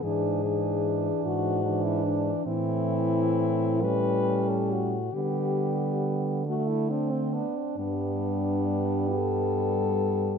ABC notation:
X:1
M:6/8
L:1/16
Q:3/8=46
K:G
V:1 name="French horn"
^G6 F3 E D2 | E6 B3 A F2 | G4- G z F E D C B, C | D6 A6 |]
V:2 name="French horn"
D2 D6 D4 | C6 ^C6 | B,6 A,2 C2 D2 | B,12 |]
V:3 name="French horn" clef=bass
E,2 E,6 E,4 | E,6 G,6 | G,6 A,4 z2 | G,12 |]
V:4 name="French horn" clef=bass
^G,,6 G,,6 | A,,12 | D,8- D,2 z2 | G,,12 |]